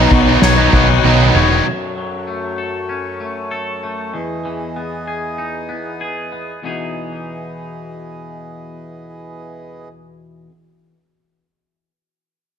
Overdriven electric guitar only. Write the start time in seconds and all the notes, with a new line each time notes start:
Already playing: B2 D#3 F#3 B3 D#4
0.12 muted overdriven electric guitar stroke
0.27 F#3 B3 D#4
0.58 F#3 B3 D#4
0.73 D#3 F#3 B3 D#4
0.89 muted overdriven electric guitar stroke
1.04 B2 D#3 F#3 B3 D#4
1.36 D#3 F#3 B3 D#4
1.51 F#3 B3 D#4